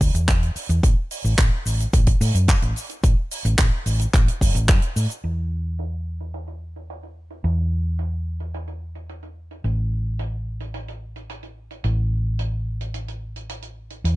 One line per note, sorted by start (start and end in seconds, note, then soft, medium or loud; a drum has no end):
0.01 0.10 D2 medium
0.01 kick medium
0.01 open hi-hat medium
0.01 shaker medium
0.14 0.49 E2 loud
0.14 closed hi-hat medium
0.14 shaker medium
0.28 kick loud
0.28 clap loud
0.28 closed hi-hat medium
0.28 shaker soft
0.43 closed hi-hat medium
0.56 muted fingered electric bass stroke soft
0.56 open hi-hat loud
0.56 shaker medium
0.69 0.79 E2 medium
0.69 closed hi-hat medium
0.69 shaker medium
0.83 0.93 A1 medium
0.83 kick loud
0.83 closed hi-hat medium
0.83 shaker soft
1.11 open hi-hat loud
1.11 shaker medium
1.24 1.34 A1 medium
1.24 shaker medium
1.38 1.48 A1 loud
1.38 kick loud
1.38 clap loud
1.38 closed hi-hat medium
1.38 shaker medium
1.66 1.85 A1 medium
1.66 open hi-hat medium
1.66 shaker medium
1.80 closed hi-hat medium
1.80 shaker medium
1.93 2.12 A1 medium
1.93 kick loud
1.93 closed hi-hat medium
1.93 shaker soft
2.07 kick medium
2.07 closed hi-hat medium
2.21 2.30 A2 loud
2.21 open hi-hat loud
2.21 shaker medium
2.34 2.54 F#2 loud
2.34 closed hi-hat medium
2.34 shaker medium
2.48 kick loud
2.48 clap loud
2.48 closed hi-hat medium
2.48 shaker medium
2.62 2.72 A1 loud
2.62 closed hi-hat medium
2.76 open hi-hat medium
2.76 shaker medium
2.89 closed hi-hat medium
2.89 shaker medium
3.04 3.13 A1 medium
3.04 kick loud
3.04 closed hi-hat medium
3.04 shaker soft
3.31 open hi-hat loud
3.31 shaker medium
3.45 3.54 A1 medium
3.45 closed hi-hat medium
3.45 shaker medium
3.58 3.68 A1 loud
3.58 kick loud
3.58 clap loud
3.58 closed hi-hat medium
3.58 shaker medium
3.86 4.05 A1 medium
3.86 open hi-hat medium
3.86 shaker medium
3.99 closed hi-hat medium
3.99 shaker medium
4.14 4.27 A1 loud
4.14 kick loud
4.14 clap medium
4.14 closed hi-hat medium
4.14 shaker medium
4.27 muted fingered electric bass stroke soft
4.27 closed hi-hat medium
4.41 4.51 F#1 medium
4.41 kick medium
4.41 open hi-hat loud
4.41 shaker medium
4.55 4.70 A1 loud
4.55 closed hi-hat medium
4.55 shaker medium
4.68 4.78 F#2 loud
4.68 kick loud
4.68 clap loud
4.68 closed hi-hat medium
4.68 shaker medium
4.82 closed hi-hat medium
4.96 5.06 A2 medium
4.96 open hi-hat medium
4.96 shaker medium
5.10 closed hi-hat medium
5.10 shaker medium
5.23 7.41 E2 medium
5.23 closed hi-hat medium
5.79 closed hi-hat medium
6.20 closed hi-hat medium
6.34 closed hi-hat medium
6.47 closed hi-hat medium
6.76 closed hi-hat soft
6.90 closed hi-hat medium
7.03 closed hi-hat soft
7.30 closed hi-hat soft
7.44 9.61 E2 medium
7.44 closed hi-hat medium
7.99 closed hi-hat medium
8.40 closed hi-hat medium
8.54 closed hi-hat medium
8.68 closed hi-hat medium
8.95 closed hi-hat soft
9.09 closed hi-hat medium
9.23 closed hi-hat soft
9.51 closed hi-hat soft
9.64 11.82 A1 medium
9.64 closed hi-hat medium
10.19 closed hi-hat medium
10.60 closed hi-hat medium
10.74 closed hi-hat medium
10.88 closed hi-hat medium
11.16 closed hi-hat medium
11.30 closed hi-hat medium
11.43 closed hi-hat soft
11.71 closed hi-hat soft
11.84 14.02 A1 medium
11.84 closed hi-hat medium
12.39 closed hi-hat medium
12.81 closed hi-hat medium
12.94 closed hi-hat medium
13.08 closed hi-hat medium
13.36 closed hi-hat soft
13.49 closed hi-hat medium
13.62 closed hi-hat soft
13.90 closed hi-hat soft
14.04 14.16 E2 medium
14.04 closed hi-hat medium